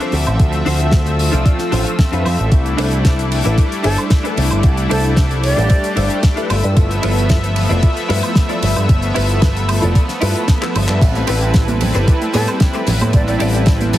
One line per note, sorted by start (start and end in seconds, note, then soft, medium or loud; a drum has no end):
0.00 0.36 F3 loud
0.00 0.36 A3 medium
0.00 0.37 C4 medium
0.00 0.13 D4 medium
0.00 0.13 F4 medium
0.00 6.46 A4 medium
0.00 0.13 A4 medium
0.00 0.14 C5 loud
0.00 0.37 E5 loud
0.00 0.37 D6 medium
0.00 closed hi-hat medium
0.12 0.24 D2 loud
0.12 open hi-hat loud
0.26 0.37 A1 medium
0.26 muted clean electric guitar stroke soft
0.26 closed hi-hat soft
0.26 high woodblock medium
0.38 0.61 D2 loud
0.38 1.16 F3 loud
0.38 1.16 A3 medium
0.38 1.16 C4 medium
0.38 1.17 E5 loud
0.38 2.50 E6 medium
0.38 kick loud
0.38 closed hi-hat medium
0.53 closed hi-hat medium
0.65 1.29 D2 medium
0.65 0.99 D4 loud
0.65 1.00 F4 loud
0.65 1.00 A4 loud
0.65 1.00 C5 loud
0.65 open hi-hat loud
0.80 closed hi-hat soft
0.92 kick loud
0.92 snare loud
0.92 closed hi-hat medium
1.06 closed hi-hat medium
1.19 1.96 F3 medium
1.19 1.96 A3 medium
1.19 1.97 C4 medium
1.19 1.97 F4 loud
1.19 open hi-hat loud
1.32 1.43 C2 loud
1.32 1.52 D4 medium
1.32 1.52 F4 medium
1.32 1.53 A4 medium
1.32 1.53 D5 loud
1.32 closed hi-hat medium
1.46 kick loud
1.46 closed hi-hat medium
1.58 snare soft
1.58 closed hi-hat medium
1.71 1.83 A1 loud
1.71 1.92 D4 loud
1.71 1.92 F4 loud
1.71 1.93 A4 loud
1.71 1.93 C5 loud
1.71 open hi-hat loud
1.87 closed hi-hat medium
1.99 2.49 F3 medium
1.99 2.49 A3 medium
1.99 2.49 C4 medium
1.99 2.49 E5 medium
1.99 kick loud
1.99 snare loud
1.99 closed hi-hat medium
2.12 2.23 F2 medium
2.12 2.25 D4 medium
2.12 2.25 F4 medium
2.12 2.26 A4 medium
2.12 2.26 B4 medium
2.12 closed hi-hat medium
2.25 2.37 F2 loud
2.25 open hi-hat loud
2.25 high woodblock medium
2.38 2.49 A1 medium
2.38 muted clean electric guitar stroke soft
2.38 closed hi-hat soft
2.52 2.73 C2 loud
2.52 3.28 G3 medium
2.52 3.29 A3 medium
2.52 3.29 D4 medium
2.52 3.29 E4 medium
2.52 6.46 E5 medium
2.52 6.46 D6 medium
2.52 kick loud
2.52 closed hi-hat medium
2.52 ride medium
2.66 closed hi-hat medium
2.77 3.41 C2 medium
2.77 3.11 D4 loud
2.77 3.12 E4 loud
2.77 3.12 A4 loud
2.77 3.12 C5 loud
2.77 open hi-hat loud
2.77 ride medium
2.92 closed hi-hat medium
3.05 kick loud
3.05 snare loud
3.05 closed hi-hat medium
3.05 ride medium
3.19 closed hi-hat medium
3.31 4.61 G3 loud
3.31 4.61 A3 medium
3.31 4.62 D4 medium
3.31 4.62 E4 loud
3.31 open hi-hat loud
3.31 ride medium
3.44 3.56 A1 loud
3.44 3.64 D4 medium
3.44 3.65 E4 medium
3.44 3.65 A4 medium
3.44 3.65 B4 loud
3.44 closed hi-hat medium
3.58 kick loud
3.58 closed hi-hat medium
3.58 ride medium
3.72 closed hi-hat medium
3.83 3.96 G1 loud
3.83 4.04 D4 loud
3.83 4.04 E4 loud
3.83 4.00 A4 loud
3.83 4.05 A4 loud
3.83 4.05 C5 loud
3.83 open hi-hat loud
3.83 ride medium
3.98 closed hi-hat medium
3.98 high woodblock medium
4.10 kick loud
4.10 snare loud
4.10 closed hi-hat medium
4.10 ride medium
4.23 4.37 D4 medium
4.23 4.37 E4 medium
4.23 4.38 A4 medium
4.23 4.38 B4 medium
4.23 closed hi-hat medium
4.37 4.49 C2 medium
4.37 open hi-hat loud
4.37 ride medium
4.50 4.62 G1 medium
4.50 muted clean electric guitar stroke soft
4.50 closed hi-hat soft
4.50 high woodblock medium
4.63 4.86 C2 loud
4.63 5.41 G3 medium
4.63 5.41 A3 medium
4.63 5.41 D4 medium
4.63 5.42 E4 loud
4.63 kick loud
4.63 closed hi-hat medium
4.63 ride medium
4.77 closed hi-hat medium
4.89 5.53 C2 medium
4.89 5.24 D4 loud
4.89 5.24 E4 loud
4.89 5.24 A4 medium
4.89 5.06 A4 loud
4.89 5.24 C5 loud
4.89 open hi-hat loud
4.89 ride loud
5.04 closed hi-hat soft
5.16 kick loud
5.16 snare loud
5.16 closed hi-hat medium
5.16 ride medium
5.31 closed hi-hat medium
5.43 6.48 G3 loud
5.43 6.49 A3 medium
5.43 6.49 D4 medium
5.43 6.49 G4 loud
5.43 6.19 D5 loud
5.43 open hi-hat loud
5.43 ride medium
5.56 5.68 A1 loud
5.56 5.77 D4 medium
5.56 5.77 E4 medium
5.56 5.77 A4 medium
5.56 5.78 C5 loud
5.56 closed hi-hat medium
5.70 kick loud
5.70 closed hi-hat medium
5.70 ride medium
5.84 closed hi-hat medium
5.96 6.08 G1 loud
5.96 6.17 D4 loud
5.96 6.17 E4 loud
5.96 6.17 A4 loud
5.96 6.18 C5 loud
5.96 open hi-hat loud
5.96 ride medium
6.10 closed hi-hat medium
6.23 kick loud
6.23 snare loud
6.23 closed hi-hat medium
6.23 ride medium
6.36 6.49 D4 medium
6.36 6.48 E4 medium
6.36 6.49 A4 medium
6.36 6.50 B4 medium
6.36 closed hi-hat medium
6.49 6.61 G1 medium
6.49 6.93 E4 medium
6.49 6.93 F4 medium
6.49 6.93 A4 medium
6.49 13.98 A4 medium
6.49 6.93 B4 loud
6.49 13.10 B5 medium
6.49 10.98 E6 medium
6.49 open hi-hat loud
6.49 ride medium
6.49 high woodblock medium
6.64 6.74 G2 loud
6.64 closed hi-hat medium
6.76 6.98 G1 loud
6.76 7.53 F3 medium
6.76 7.53 A3 medium
6.76 7.54 B3 medium
6.76 7.54 E5 loud
6.76 kick loud
6.76 closed hi-hat medium
6.76 ride medium
6.91 closed hi-hat medium
7.02 7.66 G1 medium
7.02 7.36 E4 loud
7.02 7.36 F4 loud
7.02 7.37 A4 loud
7.02 7.37 B4 loud
7.02 open hi-hat loud
7.02 ride loud
7.18 closed hi-hat medium
7.29 kick loud
7.29 snare loud
7.29 closed hi-hat medium
7.29 ride medium
7.44 closed hi-hat medium
7.56 8.86 F3 loud
7.56 8.86 A3 medium
7.56 8.86 B3 medium
7.56 8.87 E5 loud
7.56 open hi-hat medium
7.56 ride medium
7.69 7.80 F1 loud
7.69 7.89 E4 medium
7.69 7.90 F4 medium
7.69 7.90 A4 medium
7.69 7.90 D5 loud
7.69 closed hi-hat medium
7.83 kick loud
7.83 closed hi-hat medium
7.83 ride medium
7.97 closed hi-hat medium
8.08 8.21 G2 loud
8.08 8.29 E4 loud
8.08 8.29 F4 loud
8.08 8.30 A4 loud
8.08 8.30 B4 loud
8.08 open hi-hat loud
8.08 ride medium
8.23 closed hi-hat medium
8.23 high woodblock medium
8.35 kick loud
8.35 snare loud
8.35 closed hi-hat medium
8.35 ride medium
8.49 8.62 E4 medium
8.49 8.62 F4 medium
8.49 8.63 A4 medium
8.49 8.63 D5 medium
8.49 closed hi-hat medium
8.62 8.74 G1 medium
8.62 open hi-hat loud
8.62 ride loud
8.75 8.87 G2 medium
8.75 muted clean electric guitar stroke soft
8.75 closed hi-hat medium
8.75 high woodblock medium
8.88 9.11 G1 loud
8.88 9.65 F3 loud
8.88 9.66 A3 medium
8.88 9.66 B3 medium
8.88 9.66 E5 loud
8.88 kick loud
8.88 closed hi-hat medium
8.88 ride medium
9.02 closed hi-hat medium
9.14 9.79 G1 medium
9.14 9.48 E4 loud
9.14 9.49 F4 loud
9.14 9.49 A4 loud
9.14 9.49 B4 loud
9.14 open hi-hat loud
9.14 ride loud
9.29 closed hi-hat medium
9.42 kick loud
9.42 snare loud
9.42 closed hi-hat medium
9.42 ride medium
9.56 closed hi-hat medium
9.68 10.46 F3 loud
9.68 10.46 A3 medium
9.68 10.46 B3 medium
9.68 open hi-hat loud
9.68 ride medium
9.68 high woodblock medium
9.81 9.93 F1 loud
9.81 10.02 E4 medium
9.81 10.02 F4 medium
9.81 10.02 A4 medium
9.81 10.03 D5 medium
9.81 closed hi-hat medium
9.95 kick loud
9.95 closed hi-hat medium
9.95 ride medium
10.09 snare soft
10.09 closed hi-hat medium
10.21 10.33 G2 loud
10.21 10.41 E4 loud
10.21 10.42 F4 loud
10.21 10.42 A4 loud
10.21 10.42 B4 loud
10.21 open hi-hat loud
10.21 ride medium
10.35 closed hi-hat medium
10.48 10.99 F3 medium
10.48 10.99 A3 medium
10.48 10.99 B3 medium
10.48 10.99 E5 medium
10.48 kick loud
10.48 snare loud
10.48 closed hi-hat medium
10.48 ride medium
10.61 10.75 E4 medium
10.61 10.75 F4 medium
10.61 10.75 A4 medium
10.61 10.75 B4 medium
10.61 clap medium
10.61 closed hi-hat medium
10.75 10.86 G1 medium
10.75 open hi-hat loud
10.75 ride medium
10.75 high woodblock medium
10.88 10.99 G2 medium
10.88 muted clean electric guitar stroke soft
10.88 clap medium
10.88 closed hi-hat medium
11.01 11.23 A1 loud
11.01 11.78 G3 medium
11.01 11.12 G3 medium
11.01 11.78 C4 medium
11.01 11.79 E4 medium
11.01 11.78 B4 medium
11.01 13.98 G5 medium
11.01 kick loud
11.01 closed hi-hat medium
11.01 ride medium
11.01 tambourine medium
11.01 crash medium
11.15 11.22 A3 loud
11.15 closed hi-hat medium
11.15 tambourine soft
11.27 11.91 A1 medium
11.27 11.35 B3 medium
11.27 11.61 C4 loud
11.27 11.61 G4 loud
11.27 11.62 A4 loud
11.27 11.62 B4 loud
11.27 open hi-hat loud
11.27 ride medium
11.27 tambourine medium
11.41 11.49 C4 loud
11.41 closed hi-hat medium
11.41 tambourine soft
11.54 11.62 G3 medium
11.54 kick loud
11.54 snare loud
11.54 closed hi-hat medium
11.54 ride medium
11.54 tambourine medium
11.68 11.75 A3 medium
11.68 closed hi-hat medium
11.68 tambourine soft
11.68 high conga loud
11.80 13.10 G3 loud
11.80 11.88 B3 medium
11.80 13.11 C4 medium
11.80 13.11 E4 loud
11.80 13.11 B4 medium
11.80 open hi-hat loud
11.80 ride medium
11.80 tambourine medium
11.80 low conga loud
11.94 12.05 G1 loud
11.94 12.14 C4 medium
11.94 12.05 C4 medium
11.94 12.14 G4 medium
11.94 12.15 A4 medium
11.94 12.15 B4 medium
11.94 closed hi-hat medium
11.94 tambourine soft
12.08 12.18 G3 medium
12.08 kick loud
12.08 closed hi-hat medium
12.08 ride medium
12.08 tambourine medium
12.22 12.28 A3 loud
12.22 closed hi-hat medium
12.33 12.45 A2 loud
12.33 12.41 B3 medium
12.33 12.54 C4 loud
12.33 12.54 G4 loud
12.33 12.50 A4 loud
12.33 12.55 A4 loud
12.33 12.55 B4 loud
12.33 open hi-hat loud
12.33 ride medium
12.33 tambourine loud
12.33 high conga medium
12.47 12.55 C4 loud
12.47 closed hi-hat medium
12.47 tambourine soft
12.47 high woodblock medium
12.60 12.68 G3 medium
12.60 kick loud
12.60 snare loud
12.60 closed hi-hat medium
12.60 ride medium
12.60 tambourine medium
12.73 12.81 A3 medium
12.73 12.87 C4 medium
12.73 12.87 G4 medium
12.73 12.88 A4 medium
12.73 12.88 B4 medium
12.73 closed hi-hat medium
12.73 tambourine soft
12.87 12.98 A1 medium
12.87 12.95 B3 medium
12.87 open hi-hat loud
12.87 ride medium
12.87 tambourine loud
12.87 low conga medium
13.00 13.11 A2 medium
13.00 13.11 C4 medium
13.00 muted clean electric guitar stroke soft
13.00 closed hi-hat medium
13.00 tambourine soft
13.00 high conga loud
13.00 high woodblock medium
13.13 13.35 A1 loud
13.13 13.90 G3 medium
13.13 13.25 G3 medium
13.13 13.91 C4 medium
13.13 13.91 E4 loud
13.13 13.90 B4 medium
13.13 13.23 D5 medium
13.13 13.98 A5 medium
13.13 kick loud
13.13 closed hi-hat medium
13.13 ride medium
13.13 tambourine medium
13.27 13.34 A3 loud
13.27 13.36 D5 medium
13.27 closed hi-hat medium
13.27 tambourine soft
13.39 13.98 A1 medium
13.39 13.48 B3 medium
13.39 13.73 C4 loud
13.39 13.74 G4 loud
13.39 13.74 A4 loud
13.39 13.74 D5 loud
13.39 open hi-hat loud
13.39 ride medium
13.39 tambourine loud
13.54 13.61 C4 loud
13.54 closed hi-hat medium
13.54 tambourine soft
13.66 13.74 G3 medium
13.66 kick loud
13.66 snare loud
13.66 closed hi-hat medium
13.66 ride medium
13.66 tambourine medium
13.81 13.87 A3 medium
13.81 closed hi-hat medium
13.81 tambourine soft
13.81 high conga loud
13.92 13.98 G3 loud
13.92 13.98 B3 medium
13.92 13.98 C4 medium
13.92 13.98 G4 loud
13.92 13.98 A4 medium
13.92 open hi-hat loud
13.92 ride medium
13.92 tambourine loud
13.92 low conga loud